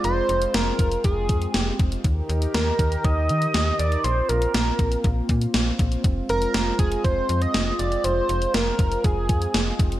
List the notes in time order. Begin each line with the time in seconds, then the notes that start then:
Already playing: G#3 C4 F4
0.04 F1 C5, closed hi-hat
0.29 F1, closed hi-hat
0.42 closed hi-hat
0.54 F1 A#4, snare, closed hi-hat
0.79 F1, kick, closed hi-hat
0.92 closed hi-hat
1.04 F1 G#4, kick, closed hi-hat
1.29 F2, kick, closed hi-hat
1.42 closed hi-hat
1.54 F1 G4, snare, closed hi-hat
1.79 F1, kick, closed hi-hat
1.92 closed hi-hat
2.04 D#2 D#3 D#4 G4 A#4, kick, closed hi-hat
2.29 D#2, closed hi-hat
2.42 closed hi-hat
2.54 D#2 A#4, snare, closed hi-hat
2.79 D#2, kick, closed hi-hat
2.92 closed hi-hat
3.04 D#2 D#5, kick, closed hi-hat
3.29 D#3, closed hi-hat
3.42 closed hi-hat
3.54 D#2, snare, closed hi-hat
3.79 D#2 D5, closed hi-hat
3.92 closed hi-hat
4.04 A#1 A#3 C4 F4 C5, closed hi-hat
4.29 A#1 A#4, closed hi-hat
4.42 closed hi-hat
4.54 A#1, snare, closed hi-hat
4.79 A#1, kick, closed hi-hat
4.92 closed hi-hat
5.04 A#1, kick, closed hi-hat
5.29 A#2, kick, closed hi-hat
5.42 closed hi-hat
5.54 A#1, snare, closed hi-hat
5.79 A#1, kick, closed hi-hat
5.92 closed hi-hat
6.04 F1 G#3, kick, closed hi-hat
6.29 F1 A#4, closed hi-hat
6.42 closed hi-hat
6.54 F1, snare, closed hi-hat
6.79 F1 G#4, kick, closed hi-hat
6.92 closed hi-hat
7.04 F1 C5, kick, closed hi-hat
7.29 F2, closed hi-hat
7.42 D#5, closed hi-hat
7.54 F1, snare, closed hi-hat
7.79 F1 D5, closed hi-hat
7.92 closed hi-hat
8.04 F1 C5, closed hi-hat
8.29 F1, closed hi-hat
8.42 closed hi-hat
8.54 F1 A#4, snare, closed hi-hat
8.79 F1, kick, closed hi-hat
8.92 closed hi-hat
9.04 F1 G#4, kick, closed hi-hat
9.29 F2, kick, closed hi-hat
9.42 closed hi-hat
9.54 F1, snare, closed hi-hat
9.79 F1, kick, closed hi-hat
9.92 closed hi-hat